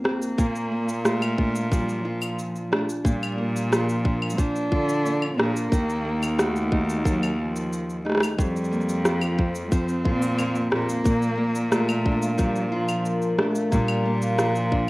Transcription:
0.00 0.38 F2 medium
0.00 0.71 A#3 medium
0.00 1.05 F4 medium
0.04 1.07 A#3 medium
0.04 0.45 C4 medium
0.04 cross-stick medium
0.22 cabasa medium
0.38 3.03 A#2 medium
0.38 2.83 A#2 loud
0.38 kick loud
0.38 cabasa medium
0.56 cabasa soft
0.72 3.38 A#3 medium
0.89 cabasa medium
1.05 1.73 A3 medium
1.05 2.04 F4 medium
1.05 cross-stick medium
1.05 cabasa medium
1.22 cabasa soft
1.22 claves medium
1.38 2.71 D4 medium
1.38 kick loud
1.55 cabasa medium
1.71 4.37 F3 medium
1.71 2.05 G3 medium
1.71 kick loud
1.71 cabasa medium
1.89 cabasa soft
2.04 2.71 F3 medium
2.04 3.70 F4 medium
2.22 cabasa medium
2.22 claves medium
2.39 cabasa medium
2.56 cabasa soft
2.71 2.86 A3 medium
2.71 4.04 D4 medium
2.71 cross-stick medium
2.89 cabasa medium
3.04 5.72 A#2 medium
3.04 4.66 A#2 loud
3.04 3.72 G3 medium
3.04 kick loud
3.04 cabasa medium
3.23 cabasa soft
3.23 claves medium
3.38 5.05 A#3 medium
3.56 cabasa medium
3.71 4.39 F3 medium
3.71 4.70 F4 medium
3.71 cross-stick medium
3.71 cabasa medium
3.89 cabasa soft
4.05 5.37 D4 medium
4.05 kick loud
4.22 claves medium
4.30 cabasa medium
4.37 5.71 F3 medium
4.37 5.39 D4 loud
4.37 kick loud
4.37 cabasa medium
4.56 cabasa soft
4.71 5.33 D3 medium
4.71 5.78 F4 medium
4.71 kick loud
4.89 cabasa medium
5.05 6.04 A#3 medium
5.05 cabasa medium
5.22 claves medium
5.38 5.65 A#2 medium
5.38 6.40 A#3 loud
5.38 5.78 D4 medium
5.38 cross-stick medium
5.56 cabasa medium
5.72 8.17 D#2 loud
5.72 8.38 D#3 medium
5.72 kick loud
5.72 cabasa medium
5.90 cabasa soft
6.05 7.04 A#3 medium
6.23 cabasa medium
6.23 claves medium
6.38 7.05 A3 medium
6.38 7.38 F#4 medium
6.38 cross-stick medium
6.38 cabasa medium
6.56 cabasa soft
6.71 8.04 D#4 medium
6.71 kick loud
6.89 cabasa medium
7.04 7.37 F#3 medium
7.04 8.71 A#3 medium
7.04 kick loud
7.04 cabasa medium
7.23 cabasa soft
7.23 claves medium
7.39 8.01 F3 loud
7.56 cabasa medium
7.73 cabasa medium
7.90 cabasa soft
8.05 8.36 A3 medium
8.05 8.45 D#4 medium
8.05 cross-stick soft
8.10 cross-stick soft
8.12 cross-stick soft
8.15 cross-stick medium
8.17 cross-stick medium
8.20 cross-stick medium
8.20 cabasa medium
8.20 claves medium
8.38 11.05 F2 medium
8.38 10.00 F2 loud
8.38 9.06 G3 medium
8.38 kick loud
8.38 cabasa medium
8.56 cabasa soft
8.64 cabasa soft
8.71 10.38 A#3 medium
8.71 cabasa soft
8.81 cabasa soft
8.89 cabasa medium
9.05 9.72 F3 medium
9.05 10.04 F4 medium
9.05 cross-stick medium
9.05 cabasa medium
9.21 cabasa soft
9.21 claves medium
9.38 10.70 C4 medium
9.38 kick loud
9.55 cabasa medium
9.70 12.37 F3 medium
9.70 10.73 C4 loud
9.70 kick loud
9.70 cabasa medium
9.88 cabasa soft
10.05 10.67 A#2 loud
10.05 11.71 F4 medium
10.05 kick loud
10.22 cabasa medium
10.38 11.37 A#3 medium
10.38 cabasa medium
10.38 claves medium
10.55 cabasa soft
10.71 10.99 A#2 medium
10.71 11.74 A#3 loud
10.71 11.11 C4 medium
10.71 cross-stick medium
10.89 cabasa medium
11.04 13.70 A#2 medium
11.04 13.50 A#2 loud
11.04 11.21 A#4 medium
11.04 kick loud
11.04 cabasa medium
11.22 cabasa soft
11.38 14.05 A#3 medium
11.55 cabasa medium
11.72 12.38 A3 loud
11.72 12.71 F4 medium
11.72 11.88 A#5 medium
11.72 cross-stick medium
11.72 cabasa medium
11.89 cabasa soft
11.89 claves medium
12.05 13.37 D4 medium
12.05 kick loud
12.22 12.38 F5 medium
12.22 cabasa medium
12.38 14.90 F3 medium
12.38 12.70 G3 loud
12.38 kick loud
12.38 cabasa medium
12.56 cabasa soft
12.72 13.40 F3 loud
12.72 14.37 F4 medium
12.89 cabasa medium
12.89 claves medium
13.05 13.21 A#4 medium
13.05 cabasa medium
13.22 cabasa soft
13.38 13.74 A3 medium
13.38 14.71 D4 medium
13.38 cross-stick medium
13.55 cabasa medium
13.71 14.90 A#2 medium
13.71 14.90 A#2 loud
13.71 14.40 G3 loud
13.71 13.87 A#5 medium
13.71 kick loud
13.71 cabasa medium
13.88 cabasa soft
13.88 claves medium
14.05 14.90 A#3 medium
14.22 14.38 F5 medium
14.22 cabasa medium
14.38 14.90 F3 loud
14.38 14.90 F4 medium
14.38 cross-stick medium
14.38 cabasa medium
14.55 cabasa soft
14.72 14.90 D4 medium
14.72 kick medium

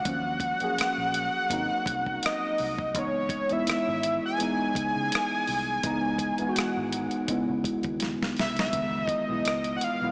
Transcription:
0.00 2.27 F#5 loud
0.05 0.53 D#2 medium
0.05 0.53 F3 medium
0.05 0.52 F#3 medium
0.05 0.52 A#3 medium
0.05 0.53 C#4 medium
0.05 kick loud
0.05 closed hi-hat medium
0.40 kick medium
0.40 closed hi-hat medium
0.60 1.37 F#3 medium
0.60 1.37 A#3 medium
0.60 1.38 C#4 medium
0.60 1.38 G#4 medium
0.60 muted fingered electric bass stroke soft
0.60 closed hi-hat soft
0.78 muted fingered electric bass stroke soft
0.78 cross-stick loud
0.78 closed hi-hat medium
0.98 1.28 A#1 medium
1.14 closed hi-hat medium
1.50 1.66 G#1 loud
1.50 2.73 F#3 medium
1.50 2.73 A#3 medium
1.50 2.74 C4 medium
1.50 2.74 D#4 medium
1.50 kick medium
1.50 closed hi-hat medium
1.86 2.17 C2 medium
1.86 kick loud
1.86 closed hi-hat medium
2.06 kick medium
2.23 3.00 D#5 medium
2.23 cross-stick loud
2.23 closed hi-hat medium
2.58 2.95 C2 medium
2.58 open hi-hat soft
2.79 kick loud
2.94 3.42 C#2 medium
2.94 3.41 E3 medium
2.94 3.41 G#3 medium
2.94 3.42 B3 medium
2.94 3.43 D#4 medium
2.94 3.54 C#5 loud
2.94 kick loud
2.94 closed hi-hat medium
3.29 kick medium
3.29 closed hi-hat medium
3.49 4.26 E3 medium
3.49 4.26 G#3 medium
3.49 4.27 B3 medium
3.49 4.27 E4 medium
3.49 4.23 E5 loud
3.49 muted fingered electric bass stroke soft
3.49 closed hi-hat soft
3.67 muted fingered electric bass stroke soft
3.67 cross-stick medium
3.67 closed hi-hat medium
3.88 4.18 G#1 medium
4.03 closed hi-hat medium
4.26 6.60 G#5 loud
4.38 5.62 E3 medium
4.38 5.63 G#3 medium
4.38 5.63 B3 medium
4.38 5.64 D#4 medium
4.38 closed hi-hat medium
4.75 4.92 C#2 medium
4.75 kick loud
4.75 closed hi-hat medium
4.96 5.09 C#3 medium
5.12 cross-stick loud
5.12 closed hi-hat medium
5.47 5.79 C2 medium
5.47 open hi-hat soft
5.83 6.31 C#2 medium
5.83 6.30 E3 medium
5.83 6.30 G#3 medium
5.83 6.31 B3 medium
5.83 6.32 D#4 loud
5.83 kick loud
5.83 closed hi-hat medium
6.18 kick medium
6.18 closed hi-hat medium
6.38 7.15 E3 medium
6.38 7.16 G#3 medium
6.38 7.16 B3 medium
6.38 muted fingered electric bass stroke soft
6.38 closed hi-hat soft
6.43 6.47 E4 medium
6.49 7.20 F#4 medium
6.56 7.98 F#5 loud
6.56 muted fingered electric bass stroke soft
6.56 cross-stick loud
6.56 closed hi-hat medium
6.77 7.07 G#1 medium
6.92 closed hi-hat medium
7.11 closed hi-hat soft
7.28 8.51 C#3 medium
7.28 8.52 G#3 medium
7.28 8.52 B3 medium
7.28 8.53 E4 medium
7.28 kick medium
7.28 closed hi-hat medium
7.49 7.63 C#3 medium
7.64 7.85 C#2 medium
7.64 kick loud
7.64 closed hi-hat medium
7.83 8.15 D#2 medium
7.83 kick medium
7.83 closed hi-hat soft
8.00 snare soft
8.00 closed hi-hat medium
8.21 8.35 C#2 medium
8.21 snare medium
8.37 8.68 C2 medium
8.37 8.56 E5 medium
8.37 snare medium
8.37 open hi-hat soft
8.56 9.06 E5 loud
8.56 snare medium
8.56 closed hi-hat soft
8.73 9.04 C#2 medium
8.73 9.21 D#3 medium
8.73 9.20 E3 medium
8.73 9.20 G#3 medium
8.73 9.21 B3 medium
8.73 kick loud
8.73 closed hi-hat medium
9.06 9.31 D#5 loud
9.06 kick medium
9.06 closed hi-hat medium
9.28 9.43 B1 medium
9.28 9.88 E3 medium
9.28 9.89 G#3 medium
9.28 9.90 B3 medium
9.28 9.90 E4 medium
9.28 9.76 D#5 medium
9.45 9.76 C#2 medium
9.45 cross-stick loud
9.45 closed hi-hat medium
9.64 closed hi-hat soft
9.77 9.85 F#5 medium
9.81 10.12 F5 loud
9.81 closed hi-hat medium
10.00 10.12 B1 medium
10.00 10.12 E3 medium
10.00 10.12 G#3 medium
10.00 10.12 B3 medium
10.00 10.12 E4 medium

